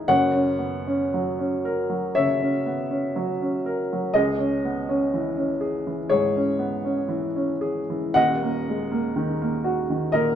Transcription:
Already playing: E3 D#4 G#4 E5 D#6 G#6
0.08 F#1 F#2 C#5 F#5
0.35 C#4
0.59 B3
0.87 C#4
1.14 F#3
1.39 C#4
1.65 A#4
1.90 F#3
2.15 C#3 C#5 E5
2.42 C#4
2.66 B3
2.91 C#4
3.16 F#3
3.42 C#4
3.66 A#4
3.93 F#3
4.14 C#2 G#4 D#5
4.38 C#4
4.65 B3
4.89 C#4
5.14 E3
5.37 C#4
5.61 G#4
5.87 E3
6.09 G#2 G#4 C#5
6.36 C#4
6.59 B3
6.85 C#4
7.08 E3
7.36 C#4
7.61 G#4
7.90 E3
8.14 D#1 D#2 D#5 F#5
8.43 A#3
8.69 G#3
8.92 A#3
9.16 D#3
9.42 A#3
9.64 F#4
9.90 D#3
10.12 A#2 A#4 D#5

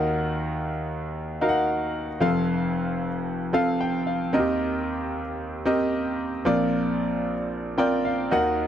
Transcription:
Already playing: D#2 D#3 D#4 F#4 A#4 F#5
1.41 D#4 F#4 A#4 F5
1.49 F#5
2.20 F1 F2 C4 F4 A4 F5
3.53 C4 F4 A4 F5 A5
3.81 G5
4.07 F5
4.33 D#2 D#3 C4 F#4 A#4 D#5
4.40 G4
5.65 C4 G4 A#4 D#5
6.45 A#1 A#2 C4 F4 A#4 D5
7.78 C4 F4 A#4 D5 G5
8.05 F5
8.31 D#2 D#3 D#4 F#4 A#4 D#5 F#5

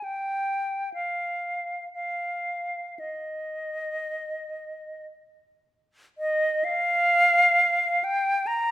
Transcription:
0.04 G5
0.94 F5
1.94 F5
2.99 D#5
6.18 D#5
6.64 F5
8.04 G5
8.47 A#5

